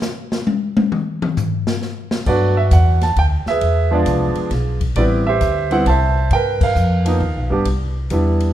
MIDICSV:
0, 0, Header, 1, 5, 480
1, 0, Start_track
1, 0, Key_signature, 1, "major"
1, 0, Tempo, 449438
1, 984, Time_signature, 3, 2, 24, 8
1, 9110, End_track
2, 0, Start_track
2, 0, Title_t, "Grand piano"
2, 0, Program_c, 0, 0
2, 2417, Note_on_c, 0, 54, 53
2, 2420, Note_on_c, 0, 57, 45
2, 2427, Note_on_c, 0, 59, 49
2, 2427, Note_on_c, 0, 74, 87
2, 2435, Note_on_c, 0, 62, 58
2, 2442, Note_on_c, 0, 66, 67
2, 2442, Note_on_c, 0, 71, 63
2, 2707, Note_off_c, 0, 54, 0
2, 2709, Note_off_c, 0, 57, 0
2, 2712, Note_off_c, 0, 59, 0
2, 2716, Note_off_c, 0, 62, 0
2, 2722, Note_off_c, 0, 74, 0
2, 2748, Note_on_c, 0, 76, 90
2, 2801, Note_off_c, 0, 76, 0
2, 2915, Note_on_c, 0, 78, 98
2, 3189, Note_off_c, 0, 66, 0
2, 3189, Note_off_c, 0, 71, 0
2, 3234, Note_on_c, 0, 81, 101
2, 3238, Note_off_c, 0, 78, 0
2, 3393, Note_off_c, 0, 81, 0
2, 3404, Note_on_c, 0, 79, 95
2, 3474, Note_off_c, 0, 79, 0
2, 3717, Note_on_c, 0, 76, 100
2, 3735, Note_on_c, 0, 68, 66
2, 3737, Note_on_c, 0, 71, 62
2, 4174, Note_on_c, 0, 53, 69
2, 4181, Note_on_c, 0, 56, 70
2, 4182, Note_on_c, 0, 59, 66
2, 4192, Note_on_c, 0, 62, 78
2, 4198, Note_on_c, 0, 74, 80
2, 4199, Note_off_c, 0, 68, 0
2, 4203, Note_off_c, 0, 76, 0
2, 4215, Note_on_c, 0, 68, 56
2, 4218, Note_on_c, 0, 65, 54
2, 4317, Note_off_c, 0, 71, 0
2, 4786, Note_off_c, 0, 53, 0
2, 4790, Note_off_c, 0, 56, 0
2, 4790, Note_off_c, 0, 59, 0
2, 4795, Note_off_c, 0, 62, 0
2, 5108, Note_off_c, 0, 74, 0
2, 5116, Note_off_c, 0, 68, 0
2, 5118, Note_off_c, 0, 65, 0
2, 5301, Note_on_c, 0, 55, 65
2, 5301, Note_on_c, 0, 74, 98
2, 5307, Note_on_c, 0, 59, 58
2, 5312, Note_on_c, 0, 60, 54
2, 5318, Note_on_c, 0, 64, 68
2, 5323, Note_on_c, 0, 67, 69
2, 5333, Note_on_c, 0, 71, 65
2, 5374, Note_off_c, 0, 74, 0
2, 5590, Note_off_c, 0, 55, 0
2, 5593, Note_off_c, 0, 59, 0
2, 5595, Note_off_c, 0, 60, 0
2, 5599, Note_off_c, 0, 64, 0
2, 5625, Note_on_c, 0, 76, 96
2, 5630, Note_off_c, 0, 67, 0
2, 5647, Note_on_c, 0, 67, 68
2, 5651, Note_on_c, 0, 72, 75
2, 6075, Note_off_c, 0, 71, 0
2, 6094, Note_on_c, 0, 55, 74
2, 6104, Note_on_c, 0, 59, 66
2, 6109, Note_on_c, 0, 60, 68
2, 6112, Note_on_c, 0, 78, 99
2, 6114, Note_on_c, 0, 64, 83
2, 6119, Note_off_c, 0, 76, 0
2, 6232, Note_off_c, 0, 67, 0
2, 6235, Note_off_c, 0, 72, 0
2, 6243, Note_off_c, 0, 55, 0
2, 6248, Note_off_c, 0, 59, 0
2, 6250, Note_off_c, 0, 60, 0
2, 6252, Note_off_c, 0, 64, 0
2, 6257, Note_off_c, 0, 78, 0
2, 6270, Note_on_c, 0, 81, 104
2, 6295, Note_on_c, 0, 72, 71
2, 6295, Note_on_c, 0, 76, 76
2, 6727, Note_off_c, 0, 72, 0
2, 6727, Note_off_c, 0, 76, 0
2, 6761, Note_off_c, 0, 81, 0
2, 6761, Note_on_c, 0, 79, 97
2, 6778, Note_on_c, 0, 70, 70
2, 6782, Note_on_c, 0, 71, 69
2, 7051, Note_off_c, 0, 79, 0
2, 7079, Note_off_c, 0, 70, 0
2, 7079, Note_off_c, 0, 71, 0
2, 7084, Note_on_c, 0, 77, 91
2, 7095, Note_on_c, 0, 70, 59
2, 7095, Note_on_c, 0, 71, 58
2, 7531, Note_on_c, 0, 53, 63
2, 7542, Note_on_c, 0, 58, 53
2, 7548, Note_on_c, 0, 59, 59
2, 7554, Note_on_c, 0, 63, 71
2, 7682, Note_off_c, 0, 53, 0
2, 7687, Note_off_c, 0, 58, 0
2, 7690, Note_off_c, 0, 59, 0
2, 7693, Note_off_c, 0, 63, 0
2, 7992, Note_off_c, 0, 77, 0
2, 7998, Note_off_c, 0, 70, 0
2, 7998, Note_off_c, 0, 71, 0
2, 8010, Note_on_c, 0, 55, 68
2, 8017, Note_on_c, 0, 59, 58
2, 8025, Note_on_c, 0, 62, 66
2, 8031, Note_on_c, 0, 67, 72
2, 8161, Note_off_c, 0, 55, 0
2, 8165, Note_off_c, 0, 59, 0
2, 8169, Note_off_c, 0, 62, 0
2, 8172, Note_off_c, 0, 67, 0
2, 8659, Note_on_c, 0, 55, 70
2, 8665, Note_on_c, 0, 59, 59
2, 8671, Note_on_c, 0, 62, 56
2, 8680, Note_on_c, 0, 64, 68
2, 9110, Note_off_c, 0, 55, 0
2, 9110, Note_off_c, 0, 59, 0
2, 9110, Note_off_c, 0, 62, 0
2, 9110, Note_off_c, 0, 64, 0
2, 9110, End_track
3, 0, Start_track
3, 0, Title_t, "Upright bass"
3, 0, Program_c, 1, 32
3, 2413, Note_on_c, 1, 43, 82
3, 2883, Note_off_c, 1, 43, 0
3, 2894, Note_on_c, 1, 40, 97
3, 3363, Note_off_c, 1, 40, 0
3, 3378, Note_on_c, 1, 38, 83
3, 3677, Note_off_c, 1, 38, 0
3, 3854, Note_on_c, 1, 40, 77
3, 4324, Note_off_c, 1, 40, 0
3, 4336, Note_on_c, 1, 36, 91
3, 4636, Note_off_c, 1, 36, 0
3, 4814, Note_on_c, 1, 35, 85
3, 5284, Note_off_c, 1, 35, 0
3, 5290, Note_on_c, 1, 33, 81
3, 5762, Note_off_c, 1, 33, 0
3, 5777, Note_on_c, 1, 38, 95
3, 6246, Note_off_c, 1, 38, 0
3, 6255, Note_on_c, 1, 36, 93
3, 6725, Note_off_c, 1, 36, 0
3, 6732, Note_on_c, 1, 43, 82
3, 7204, Note_off_c, 1, 43, 0
3, 7213, Note_on_c, 1, 41, 88
3, 7684, Note_off_c, 1, 41, 0
3, 7693, Note_on_c, 1, 39, 92
3, 7858, Note_off_c, 1, 39, 0
3, 7858, Note_on_c, 1, 35, 60
3, 8013, Note_off_c, 1, 35, 0
3, 8020, Note_on_c, 1, 31, 55
3, 8167, Note_off_c, 1, 31, 0
3, 8174, Note_on_c, 1, 36, 73
3, 8645, Note_off_c, 1, 36, 0
3, 8656, Note_on_c, 1, 40, 85
3, 9110, Note_off_c, 1, 40, 0
3, 9110, End_track
4, 0, Start_track
4, 0, Title_t, "Muted upright bass strokes"
4, 3691, Note_on_c, 9, 29, 35
4, 3798, Note_off_c, 9, 29, 0
4, 9110, End_track
5, 0, Start_track
5, 0, Title_t, "Drums"
5, 18, Note_on_c, 9, 44, 58
5, 20, Note_on_c, 9, 38, 97
5, 125, Note_off_c, 9, 44, 0
5, 127, Note_off_c, 9, 38, 0
5, 340, Note_on_c, 9, 38, 111
5, 447, Note_off_c, 9, 38, 0
5, 500, Note_on_c, 9, 48, 99
5, 607, Note_off_c, 9, 48, 0
5, 818, Note_on_c, 9, 48, 121
5, 925, Note_off_c, 9, 48, 0
5, 982, Note_on_c, 9, 47, 99
5, 1089, Note_off_c, 9, 47, 0
5, 1306, Note_on_c, 9, 47, 119
5, 1412, Note_off_c, 9, 47, 0
5, 1462, Note_on_c, 9, 44, 59
5, 1464, Note_on_c, 9, 43, 100
5, 1569, Note_off_c, 9, 44, 0
5, 1571, Note_off_c, 9, 43, 0
5, 1783, Note_on_c, 9, 38, 119
5, 1890, Note_off_c, 9, 38, 0
5, 1942, Note_on_c, 9, 38, 55
5, 2049, Note_off_c, 9, 38, 0
5, 2254, Note_on_c, 9, 38, 113
5, 2361, Note_off_c, 9, 38, 0
5, 2415, Note_on_c, 9, 49, 64
5, 2418, Note_on_c, 9, 36, 63
5, 2522, Note_off_c, 9, 49, 0
5, 2525, Note_off_c, 9, 36, 0
5, 2896, Note_on_c, 9, 44, 55
5, 2896, Note_on_c, 9, 51, 65
5, 2898, Note_on_c, 9, 36, 25
5, 3003, Note_off_c, 9, 44, 0
5, 3003, Note_off_c, 9, 51, 0
5, 3005, Note_off_c, 9, 36, 0
5, 3219, Note_on_c, 9, 51, 52
5, 3221, Note_on_c, 9, 38, 52
5, 3326, Note_off_c, 9, 51, 0
5, 3328, Note_off_c, 9, 38, 0
5, 3378, Note_on_c, 9, 36, 17
5, 3379, Note_on_c, 9, 51, 60
5, 3485, Note_off_c, 9, 36, 0
5, 3486, Note_off_c, 9, 51, 0
5, 3699, Note_on_c, 9, 38, 59
5, 3805, Note_off_c, 9, 38, 0
5, 3858, Note_on_c, 9, 36, 21
5, 3858, Note_on_c, 9, 51, 60
5, 3964, Note_off_c, 9, 51, 0
5, 3965, Note_off_c, 9, 36, 0
5, 4334, Note_on_c, 9, 44, 51
5, 4334, Note_on_c, 9, 51, 65
5, 4336, Note_on_c, 9, 36, 21
5, 4441, Note_off_c, 9, 44, 0
5, 4441, Note_off_c, 9, 51, 0
5, 4443, Note_off_c, 9, 36, 0
5, 4650, Note_on_c, 9, 51, 49
5, 4757, Note_off_c, 9, 51, 0
5, 4814, Note_on_c, 9, 51, 60
5, 4816, Note_on_c, 9, 36, 24
5, 4816, Note_on_c, 9, 38, 37
5, 4920, Note_off_c, 9, 51, 0
5, 4922, Note_off_c, 9, 36, 0
5, 4923, Note_off_c, 9, 38, 0
5, 5135, Note_on_c, 9, 36, 62
5, 5135, Note_on_c, 9, 51, 53
5, 5242, Note_off_c, 9, 36, 0
5, 5242, Note_off_c, 9, 51, 0
5, 5293, Note_on_c, 9, 51, 62
5, 5295, Note_on_c, 9, 36, 17
5, 5400, Note_off_c, 9, 51, 0
5, 5402, Note_off_c, 9, 36, 0
5, 5775, Note_on_c, 9, 44, 50
5, 5775, Note_on_c, 9, 51, 55
5, 5777, Note_on_c, 9, 36, 20
5, 5882, Note_off_c, 9, 44, 0
5, 5882, Note_off_c, 9, 51, 0
5, 5884, Note_off_c, 9, 36, 0
5, 6097, Note_on_c, 9, 51, 48
5, 6203, Note_off_c, 9, 51, 0
5, 6259, Note_on_c, 9, 36, 18
5, 6259, Note_on_c, 9, 51, 57
5, 6365, Note_off_c, 9, 36, 0
5, 6366, Note_off_c, 9, 51, 0
5, 6735, Note_on_c, 9, 51, 55
5, 6738, Note_on_c, 9, 36, 22
5, 6842, Note_off_c, 9, 51, 0
5, 6845, Note_off_c, 9, 36, 0
5, 7059, Note_on_c, 9, 36, 89
5, 7059, Note_on_c, 9, 49, 77
5, 7165, Note_off_c, 9, 36, 0
5, 7166, Note_off_c, 9, 49, 0
5, 7218, Note_on_c, 9, 44, 60
5, 7325, Note_off_c, 9, 44, 0
5, 7537, Note_on_c, 9, 51, 73
5, 7644, Note_off_c, 9, 51, 0
5, 7697, Note_on_c, 9, 36, 18
5, 7804, Note_off_c, 9, 36, 0
5, 8174, Note_on_c, 9, 51, 66
5, 8176, Note_on_c, 9, 36, 20
5, 8280, Note_off_c, 9, 51, 0
5, 8283, Note_off_c, 9, 36, 0
5, 8653, Note_on_c, 9, 44, 52
5, 8653, Note_on_c, 9, 51, 60
5, 8657, Note_on_c, 9, 36, 22
5, 8760, Note_off_c, 9, 44, 0
5, 8760, Note_off_c, 9, 51, 0
5, 8763, Note_off_c, 9, 36, 0
5, 8976, Note_on_c, 9, 51, 52
5, 9083, Note_off_c, 9, 51, 0
5, 9110, End_track
0, 0, End_of_file